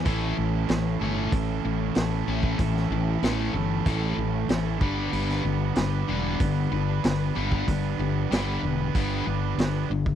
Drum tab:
HH |o---o---o---o---|o---o---o---o---|o---o---o---o---|o---o---o---o---|
SD |----o-------o---|-o--o-------o---|-o--o-------o---|----o-------o---|
BD |o-------o------o|o-------o-----o-|--------o------o|o-------o------o|